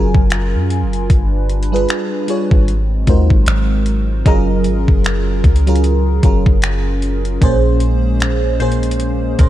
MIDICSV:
0, 0, Header, 1, 6, 480
1, 0, Start_track
1, 0, Tempo, 789474
1, 669, Time_signature, 4, 2, 24, 8
1, 5771, End_track
2, 0, Start_track
2, 0, Title_t, "Synth pluck"
2, 0, Program_c, 0, 84
2, 2593, Note_on_c, 0, 75, 49
2, 4070, Note_off_c, 0, 75, 0
2, 5229, Note_on_c, 0, 72, 60
2, 5707, Note_on_c, 0, 70, 57
2, 5771, Note_off_c, 0, 70, 0
2, 5771, Note_off_c, 0, 72, 0
2, 5771, End_track
3, 0, Start_track
3, 0, Title_t, "FM electric piano"
3, 0, Program_c, 1, 5
3, 0, Control_c, 1, 64, 127
3, 0, Note_on_c, 1, 54, 83
3, 0, Note_on_c, 1, 61, 71
3, 0, Note_on_c, 1, 65, 77
3, 0, Note_on_c, 1, 68, 78
3, 0, Note_on_c, 1, 70, 91
3, 668, Note_off_c, 1, 54, 0
3, 670, Note_off_c, 1, 61, 0
3, 672, Note_off_c, 1, 65, 0
3, 674, Note_off_c, 1, 68, 0
3, 676, Note_off_c, 1, 70, 0
3, 678, Control_c, 1, 64, 0
3, 764, Control_c, 1, 64, 127
3, 1045, Note_on_c, 1, 55, 79
3, 1049, Note_on_c, 1, 62, 75
3, 1053, Note_on_c, 1, 65, 75
3, 1057, Note_on_c, 1, 68, 71
3, 1059, Note_on_c, 1, 71, 87
3, 1321, Note_off_c, 1, 55, 0
3, 1323, Note_off_c, 1, 62, 0
3, 1325, Note_off_c, 1, 65, 0
3, 1326, Note_off_c, 1, 68, 0
3, 1328, Note_off_c, 1, 71, 0
3, 1385, Note_on_c, 1, 55, 76
3, 1388, Note_on_c, 1, 62, 73
3, 1393, Note_on_c, 1, 65, 69
3, 1396, Note_on_c, 1, 68, 72
3, 1400, Note_on_c, 1, 73, 89
3, 1627, Note_off_c, 1, 55, 0
3, 1629, Note_off_c, 1, 62, 0
3, 1631, Note_off_c, 1, 65, 0
3, 1632, Note_off_c, 1, 68, 0
3, 1634, Note_off_c, 1, 73, 0
3, 1638, Control_c, 1, 64, 0
3, 1742, Control_c, 1, 64, 127
3, 1866, Note_on_c, 1, 56, 80
3, 1869, Note_on_c, 1, 63, 74
3, 1872, Note_on_c, 1, 65, 72
3, 1875, Note_on_c, 1, 66, 73
3, 1879, Note_on_c, 1, 70, 70
3, 1881, Note_on_c, 1, 72, 84
3, 2441, Note_off_c, 1, 56, 0
3, 2443, Note_off_c, 1, 63, 0
3, 2444, Note_off_c, 1, 65, 0
3, 2446, Note_off_c, 1, 66, 0
3, 2447, Note_off_c, 1, 70, 0
3, 2449, Note_off_c, 1, 72, 0
3, 2586, Note_on_c, 1, 54, 104
3, 2589, Note_on_c, 1, 61, 98
3, 2593, Note_on_c, 1, 65, 89
3, 2597, Control_c, 1, 64, 0
3, 2597, Note_on_c, 1, 68, 89
3, 2600, Note_on_c, 1, 70, 110
3, 2693, Control_c, 1, 64, 127
3, 3252, Note_off_c, 1, 54, 0
3, 3254, Note_off_c, 1, 61, 0
3, 3255, Note_off_c, 1, 65, 0
3, 3258, Note_off_c, 1, 68, 0
3, 3259, Note_off_c, 1, 70, 0
3, 3446, Note_on_c, 1, 54, 76
3, 3449, Note_on_c, 1, 61, 75
3, 3453, Note_on_c, 1, 65, 73
3, 3457, Note_on_c, 1, 68, 73
3, 3460, Note_on_c, 1, 70, 88
3, 3721, Note_off_c, 1, 54, 0
3, 3722, Note_off_c, 1, 61, 0
3, 3725, Note_off_c, 1, 65, 0
3, 3727, Note_off_c, 1, 68, 0
3, 3728, Note_off_c, 1, 70, 0
3, 3787, Note_on_c, 1, 54, 79
3, 3791, Note_on_c, 1, 61, 77
3, 3795, Note_on_c, 1, 65, 71
3, 3798, Note_on_c, 1, 68, 72
3, 3802, Note_on_c, 1, 70, 86
3, 4361, Note_off_c, 1, 54, 0
3, 4364, Note_off_c, 1, 61, 0
3, 4365, Note_off_c, 1, 65, 0
3, 4367, Note_off_c, 1, 68, 0
3, 4369, Note_off_c, 1, 70, 0
3, 4506, Note_on_c, 1, 46, 104
3, 4510, Note_on_c, 1, 58, 97
3, 4513, Note_on_c, 1, 61, 95
3, 4516, Control_c, 1, 64, 0
3, 4517, Note_on_c, 1, 68, 97
3, 4521, Note_on_c, 1, 72, 108
3, 4623, Control_c, 1, 64, 127
3, 5081, Note_off_c, 1, 46, 0
3, 5083, Note_off_c, 1, 58, 0
3, 5085, Note_off_c, 1, 61, 0
3, 5086, Note_off_c, 1, 68, 0
3, 5089, Note_off_c, 1, 72, 0
3, 5227, Note_on_c, 1, 46, 90
3, 5231, Note_on_c, 1, 58, 81
3, 5235, Note_on_c, 1, 61, 80
3, 5239, Note_on_c, 1, 68, 82
3, 5242, Note_on_c, 1, 72, 100
3, 5619, Note_off_c, 1, 46, 0
3, 5621, Note_off_c, 1, 58, 0
3, 5623, Note_off_c, 1, 61, 0
3, 5625, Note_off_c, 1, 68, 0
3, 5626, Note_off_c, 1, 72, 0
3, 5707, Note_on_c, 1, 46, 77
3, 5711, Note_on_c, 1, 58, 75
3, 5714, Note_on_c, 1, 61, 74
3, 5718, Note_on_c, 1, 68, 76
3, 5721, Note_on_c, 1, 72, 96
3, 5771, Note_off_c, 1, 46, 0
3, 5771, Note_off_c, 1, 58, 0
3, 5771, Note_off_c, 1, 61, 0
3, 5771, Note_off_c, 1, 68, 0
3, 5771, Note_off_c, 1, 72, 0
3, 5771, End_track
4, 0, Start_track
4, 0, Title_t, "Analog synth pad"
4, 0, Program_c, 2, 89
4, 0, Note_on_c, 2, 54, 73
4, 0, Note_on_c, 2, 61, 88
4, 0, Note_on_c, 2, 65, 68
4, 0, Note_on_c, 2, 70, 81
4, 0, Note_on_c, 2, 80, 70
4, 645, Note_off_c, 2, 61, 0
4, 647, Note_off_c, 2, 54, 0
4, 647, Note_off_c, 2, 70, 0
4, 669, Note_on_c, 2, 62, 70
4, 670, Note_on_c, 2, 71, 87
4, 671, Note_on_c, 2, 55, 75
4, 1604, Note_off_c, 2, 65, 0
4, 1604, Note_off_c, 2, 80, 0
4, 1620, Note_off_c, 2, 55, 0
4, 1620, Note_off_c, 2, 62, 0
4, 1620, Note_off_c, 2, 71, 0
4, 1627, Note_on_c, 2, 54, 83
4, 1627, Note_on_c, 2, 56, 78
4, 1627, Note_on_c, 2, 60, 71
4, 2579, Note_off_c, 2, 54, 0
4, 2579, Note_off_c, 2, 56, 0
4, 2579, Note_off_c, 2, 60, 0
4, 2588, Note_on_c, 2, 65, 75
4, 2589, Note_on_c, 2, 54, 84
4, 2589, Note_on_c, 2, 61, 74
4, 2589, Note_on_c, 2, 68, 75
4, 2589, Note_on_c, 2, 70, 89
4, 4490, Note_off_c, 2, 54, 0
4, 4490, Note_off_c, 2, 65, 0
4, 4490, Note_off_c, 2, 68, 0
4, 4490, Note_off_c, 2, 70, 0
4, 4510, Note_on_c, 2, 56, 80
4, 4511, Note_on_c, 2, 58, 75
4, 5771, Note_off_c, 2, 56, 0
4, 5771, Note_off_c, 2, 58, 0
4, 5771, Note_off_c, 2, 61, 0
4, 5771, End_track
5, 0, Start_track
5, 0, Title_t, "808-style bass"
5, 0, Program_c, 3, 38
5, 0, Note_on_c, 3, 30, 96
5, 83, Note_off_c, 3, 30, 0
5, 90, Note_on_c, 3, 30, 106
5, 331, Note_on_c, 3, 42, 91
5, 340, Note_off_c, 3, 30, 0
5, 501, Note_on_c, 3, 30, 94
5, 510, Note_off_c, 3, 42, 0
5, 662, Note_off_c, 3, 30, 0
5, 670, Note_on_c, 3, 31, 107
5, 1130, Note_off_c, 3, 31, 0
5, 1529, Note_on_c, 3, 32, 96
5, 1856, Note_off_c, 3, 32, 0
5, 1871, Note_on_c, 3, 39, 96
5, 2004, Note_off_c, 3, 39, 0
5, 2010, Note_on_c, 3, 32, 101
5, 2106, Note_off_c, 3, 32, 0
5, 2110, Note_on_c, 3, 32, 101
5, 2570, Note_off_c, 3, 32, 0
5, 2590, Note_on_c, 3, 30, 102
5, 2830, Note_on_c, 3, 32, 88
5, 2839, Note_off_c, 3, 30, 0
5, 2962, Note_off_c, 3, 32, 0
5, 2970, Note_on_c, 3, 30, 101
5, 3296, Note_off_c, 3, 30, 0
5, 3309, Note_on_c, 3, 37, 100
5, 3770, Note_off_c, 3, 37, 0
5, 3791, Note_on_c, 3, 30, 101
5, 3924, Note_off_c, 3, 30, 0
5, 3930, Note_on_c, 3, 30, 99
5, 4487, Note_off_c, 3, 30, 0
5, 4510, Note_on_c, 3, 34, 109
5, 5686, Note_off_c, 3, 34, 0
5, 5711, Note_on_c, 3, 37, 97
5, 5771, Note_off_c, 3, 37, 0
5, 5771, End_track
6, 0, Start_track
6, 0, Title_t, "Drums"
6, 88, Note_on_c, 9, 36, 91
6, 149, Note_off_c, 9, 36, 0
6, 185, Note_on_c, 9, 42, 76
6, 194, Note_on_c, 9, 26, 113
6, 245, Note_off_c, 9, 42, 0
6, 255, Note_off_c, 9, 26, 0
6, 428, Note_on_c, 9, 42, 57
6, 489, Note_off_c, 9, 42, 0
6, 567, Note_on_c, 9, 42, 51
6, 628, Note_off_c, 9, 42, 0
6, 668, Note_on_c, 9, 36, 103
6, 668, Note_on_c, 9, 42, 65
6, 729, Note_off_c, 9, 36, 0
6, 729, Note_off_c, 9, 42, 0
6, 909, Note_on_c, 9, 42, 51
6, 970, Note_off_c, 9, 42, 0
6, 989, Note_on_c, 9, 42, 51
6, 1049, Note_off_c, 9, 42, 0
6, 1069, Note_on_c, 9, 42, 53
6, 1130, Note_off_c, 9, 42, 0
6, 1147, Note_on_c, 9, 42, 54
6, 1157, Note_on_c, 9, 26, 113
6, 1207, Note_off_c, 9, 42, 0
6, 1218, Note_off_c, 9, 26, 0
6, 1387, Note_on_c, 9, 42, 63
6, 1448, Note_off_c, 9, 42, 0
6, 1528, Note_on_c, 9, 36, 105
6, 1589, Note_off_c, 9, 36, 0
6, 1630, Note_on_c, 9, 42, 62
6, 1691, Note_off_c, 9, 42, 0
6, 1868, Note_on_c, 9, 42, 66
6, 1869, Note_on_c, 9, 36, 92
6, 1928, Note_off_c, 9, 42, 0
6, 1930, Note_off_c, 9, 36, 0
6, 2009, Note_on_c, 9, 36, 91
6, 2070, Note_off_c, 9, 36, 0
6, 2106, Note_on_c, 9, 42, 73
6, 2115, Note_on_c, 9, 26, 113
6, 2167, Note_off_c, 9, 42, 0
6, 2176, Note_off_c, 9, 26, 0
6, 2346, Note_on_c, 9, 42, 63
6, 2407, Note_off_c, 9, 42, 0
6, 2589, Note_on_c, 9, 36, 106
6, 2589, Note_on_c, 9, 42, 67
6, 2650, Note_off_c, 9, 36, 0
6, 2650, Note_off_c, 9, 42, 0
6, 2823, Note_on_c, 9, 42, 60
6, 2884, Note_off_c, 9, 42, 0
6, 2968, Note_on_c, 9, 36, 78
6, 3029, Note_off_c, 9, 36, 0
6, 3067, Note_on_c, 9, 42, 56
6, 3077, Note_on_c, 9, 26, 111
6, 3128, Note_off_c, 9, 42, 0
6, 3138, Note_off_c, 9, 26, 0
6, 3308, Note_on_c, 9, 36, 96
6, 3309, Note_on_c, 9, 42, 43
6, 3369, Note_off_c, 9, 36, 0
6, 3370, Note_off_c, 9, 42, 0
6, 3379, Note_on_c, 9, 42, 54
6, 3440, Note_off_c, 9, 42, 0
6, 3449, Note_on_c, 9, 42, 63
6, 3499, Note_off_c, 9, 42, 0
6, 3499, Note_on_c, 9, 42, 66
6, 3550, Note_off_c, 9, 42, 0
6, 3550, Note_on_c, 9, 42, 65
6, 3611, Note_off_c, 9, 42, 0
6, 3788, Note_on_c, 9, 42, 69
6, 3789, Note_on_c, 9, 36, 88
6, 3849, Note_off_c, 9, 42, 0
6, 3850, Note_off_c, 9, 36, 0
6, 3929, Note_on_c, 9, 36, 92
6, 3990, Note_off_c, 9, 36, 0
6, 4026, Note_on_c, 9, 42, 74
6, 4035, Note_on_c, 9, 26, 120
6, 4086, Note_off_c, 9, 42, 0
6, 4095, Note_off_c, 9, 26, 0
6, 4270, Note_on_c, 9, 42, 53
6, 4330, Note_off_c, 9, 42, 0
6, 4408, Note_on_c, 9, 42, 53
6, 4469, Note_off_c, 9, 42, 0
6, 4509, Note_on_c, 9, 36, 110
6, 4510, Note_on_c, 9, 42, 69
6, 4570, Note_off_c, 9, 36, 0
6, 4570, Note_off_c, 9, 42, 0
6, 4744, Note_on_c, 9, 42, 60
6, 4805, Note_off_c, 9, 42, 0
6, 4988, Note_on_c, 9, 42, 55
6, 4998, Note_on_c, 9, 26, 111
6, 5048, Note_off_c, 9, 42, 0
6, 5059, Note_off_c, 9, 26, 0
6, 5230, Note_on_c, 9, 42, 42
6, 5291, Note_off_c, 9, 42, 0
6, 5300, Note_on_c, 9, 42, 52
6, 5360, Note_off_c, 9, 42, 0
6, 5369, Note_on_c, 9, 42, 61
6, 5419, Note_off_c, 9, 42, 0
6, 5419, Note_on_c, 9, 42, 70
6, 5470, Note_off_c, 9, 42, 0
6, 5470, Note_on_c, 9, 42, 64
6, 5531, Note_off_c, 9, 42, 0
6, 5707, Note_on_c, 9, 42, 66
6, 5709, Note_on_c, 9, 36, 89
6, 5768, Note_off_c, 9, 42, 0
6, 5770, Note_off_c, 9, 36, 0
6, 5771, End_track
0, 0, End_of_file